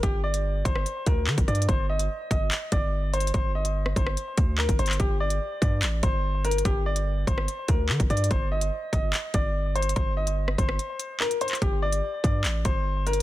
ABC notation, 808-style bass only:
X:1
M:4/4
L:1/16
Q:1/4=145
K:Gm
V:1 name="808-style bass" clef=bass
G,,,6 G,,,2 z2 D,,2 D, G,,, G,,2 | G,,,4 z2 G,,,2 z2 G,,,6 | G,,,6 G,,,2 z2 D,,3 G,,, G,,,2 | G,,,4 z2 G,,2 A,,,2 G,,,6 |
G,,,6 G,,,2 z2 D,,2 D, G,,, G,,2 | G,,,4 z2 G,,,2 z2 G,,,6 | G,,,6 G,,,2 z8 | G,,,4 z2 G,,2 A,,,2 G,,,6 |]